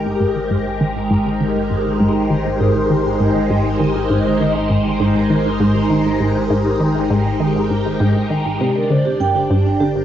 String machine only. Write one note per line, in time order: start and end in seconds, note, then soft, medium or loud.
0.00 8.60 G#3 medium
0.00 8.60 D#4 medium
0.00 8.60 G4 medium
0.00 8.60 A#4 medium
0.32 9.87 C5 medium
8.60 10.05 D4 medium
8.75 10.05 G5 medium
9.46 10.05 A#4 medium